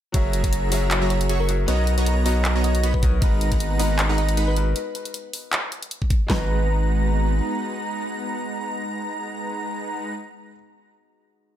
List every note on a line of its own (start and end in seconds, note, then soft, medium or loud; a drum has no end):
0.12 1.66 F#1 medium
0.12 0.69 F#3 loud
0.12 0.41 F#3 loud
0.12 1.67 F#3 medium
0.12 1.67 C#4 medium
0.12 1.67 E4 medium
0.12 0.69 F#4 medium
0.12 0.41 F#4 medium
0.12 0.41 G#4 loud
0.12 0.70 G#4 medium
0.12 1.67 G#4 medium
0.12 1.67 A#4 loud
0.12 0.70 A#4 medium
0.12 0.43 C#5 loud
0.12 0.41 E5 loud
0.12 0.71 E5 loud
0.12 0.41 A#5 loud
0.12 kick loud
0.12 closed hi-hat medium
0.33 closed hi-hat medium
0.44 0.70 F#3 loud
0.44 0.70 F#4 medium
0.44 0.70 G#4 medium
0.44 0.70 E5 medium
0.44 0.70 A#5 loud
0.44 kick medium
0.44 closed hi-hat medium
0.53 closed hi-hat medium
0.70 1.46 F#3 medium
0.70 0.99 F#3 medium
0.70 1.46 F#4 medium
0.70 0.99 F#4 medium
0.70 0.99 G#4 medium
0.70 1.47 G#4 medium
0.70 1.47 A#4 medium
0.70 0.86 C#5 medium
0.70 0.99 E5 medium
0.70 0.99 A#5 loud
0.70 0.99 A#5 medium
0.70 open hi-hat medium
0.74 1.48 E5 loud
0.91 clap loud
0.91 closed hi-hat medium
1.02 1.27 F#3 medium
1.02 1.27 F#4 medium
1.02 1.27 G#4 medium
1.02 1.27 E5 medium
1.02 1.27 A#5 loud
1.10 1.31 C#5 medium
1.10 closed hi-hat medium
1.21 closed hi-hat medium
1.29 1.50 F#3 medium
1.29 1.50 F#4 medium
1.29 1.50 G#4 medium
1.29 1.50 E5 medium
1.29 1.50 C#6 medium
1.29 closed hi-hat medium
1.40 1.61 A#4 medium
1.48 1.66 F#3 medium
1.48 1.66 F#4 medium
1.48 1.66 G#4 medium
1.48 1.66 A#4 medium
1.48 1.66 E5 loud
1.48 closed hi-hat medium
1.66 3.20 B1 medium
1.66 2.22 B3 loud
1.66 1.95 B3 loud
1.66 3.20 B3 medium
1.66 4.73 D#4 loud
1.66 2.23 F#4 medium
1.66 1.95 F#4 medium
1.66 3.20 A#4 medium
1.66 2.24 A#4 medium
1.66 1.95 C#5 loud
1.66 2.24 C#5 medium
1.66 1.97 D#5 loud
1.66 1.95 D#5 loud
1.66 1.95 A#5 loud
1.66 closed hi-hat medium
1.70 2.25 D#5 loud
1.87 closed hi-hat medium
1.98 2.24 B3 loud
1.98 2.24 F#4 medium
1.98 2.24 C#5 medium
1.98 2.24 D#5 medium
1.98 2.24 A#5 loud
1.98 closed hi-hat medium
2.06 closed hi-hat medium
2.24 3.00 B3 loud
2.24 2.53 B3 medium
2.24 3.00 F#4 medium
2.24 2.53 F#4 medium
2.24 3.01 A#4 medium
2.24 2.53 C#5 medium
2.24 3.01 C#5 medium
2.24 2.53 D#5 medium
2.24 2.40 D#5 medium
2.24 2.53 A#5 medium
2.24 open hi-hat medium
2.28 3.02 D#5 loud
2.45 clap loud
2.45 closed hi-hat medium
2.56 2.81 B3 medium
2.56 2.81 F#4 medium
2.56 2.81 C#5 medium
2.56 2.81 D#5 medium
2.56 2.81 A#5 loud
2.64 2.85 D#5 medium
2.64 closed hi-hat medium
2.75 closed hi-hat medium
2.83 3.04 B3 medium
2.83 3.04 F#4 medium
2.83 3.04 C#5 medium
2.83 3.04 D#5 medium
2.83 3.04 B5 medium
2.83 closed hi-hat medium
2.94 3.15 B4 medium
2.94 kick medium
3.02 3.19 B3 medium
3.02 3.20 F#4 medium
3.02 3.20 A#4 medium
3.02 3.20 C#5 medium
3.02 3.20 D#5 loud
3.02 kick loud
3.02 closed hi-hat medium
3.20 4.74 G#1 medium
3.20 3.76 G#3 loud
3.20 4.74 G#3 medium
3.20 3.49 G#3 loud
3.20 4.74 B3 loud
3.20 3.77 D#4 medium
3.20 3.49 D#4 loud
3.20 4.74 F#4 medium
3.20 3.78 F#4 medium
3.20 3.78 A#4 medium
3.20 3.49 B4 loud
3.20 3.79 B4 loud
3.20 3.50 D#5 loud
3.20 3.49 F#5 loud
3.20 4.74 A#5 medium
3.20 3.49 A#5 loud
3.20 kick loud
3.20 closed hi-hat medium
3.41 closed hi-hat medium
3.52 3.78 G#3 loud
3.52 3.78 D#4 medium
3.52 3.78 B4 medium
3.52 3.78 F#5 medium
3.52 3.78 A#5 loud
3.52 kick medium
3.52 closed hi-hat medium
3.60 closed hi-hat medium
3.78 4.54 G#3 medium
3.78 4.07 G#3 medium
3.78 4.54 D#4 medium
3.78 4.07 D#4 medium
3.78 4.54 F#4 medium
3.78 4.55 A#4 medium
3.78 4.07 B4 medium
3.78 4.55 B4 loud
3.78 3.94 D#5 medium
3.78 4.07 F#5 medium
3.78 4.07 A#5 medium
3.78 open hi-hat medium
3.99 clap loud
3.99 closed hi-hat medium
4.09 4.35 G#3 medium
4.09 4.35 D#4 medium
4.09 4.35 B4 medium
4.09 4.35 F#5 medium
4.09 4.35 A#5 loud
4.18 4.39 D#5 medium
4.18 closed hi-hat medium
4.29 closed hi-hat medium
4.37 4.58 G#3 medium
4.37 4.58 D#4 medium
4.37 4.58 B4 medium
4.37 4.58 F#5 medium
4.37 4.58 B5 medium
4.37 closed hi-hat medium
4.48 4.68 B4 medium
4.56 4.73 G#3 medium
4.56 4.73 D#4 medium
4.56 4.74 F#4 medium
4.56 4.74 A#4 medium
4.56 4.74 B4 loud
4.56 closed hi-hat medium
4.76 closed hi-hat medium
4.95 closed hi-hat medium
5.05 closed hi-hat medium
5.14 closed hi-hat medium
5.33 open hi-hat medium
5.53 clap loud
5.53 closed hi-hat medium
5.72 closed hi-hat medium
5.83 closed hi-hat medium
5.91 closed hi-hat medium
6.02 kick medium
6.10 kick loud
6.10 closed hi-hat medium
6.27 7.41 G#1 medium
6.27 10.47 G#3 medium
6.27 10.13 G#3 medium
6.27 10.13 B3 loud
6.27 10.49 D#4 medium
6.27 10.13 D#4 medium
6.27 10.13 F#4 medium
6.27 10.50 F#4 medium
6.27 10.50 B4 medium
6.27 10.13 B4 medium
6.27 10.13 F#5 medium
6.27 10.13 A#5 medium
6.27 10.13 A#5 loud
6.27 kick loud
6.27 snare loud
6.27 clap medium
6.31 10.53 B4 loud
6.31 10.52 A#5 medium